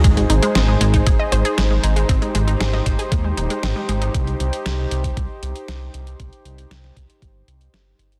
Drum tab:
HH |xxxxx-xxx-xxx-xx|xxxxx-xxx-xxx-xx|xxxxx-xxx-xxx-xx|xxxxx-xxx-xxx-xx|
SD |----o-------o---|----oo------o---|----o-------o---|----oo------o---|
BD |o------oo-------|o-----o-o-------|o------oo-------|o-----o-o-------|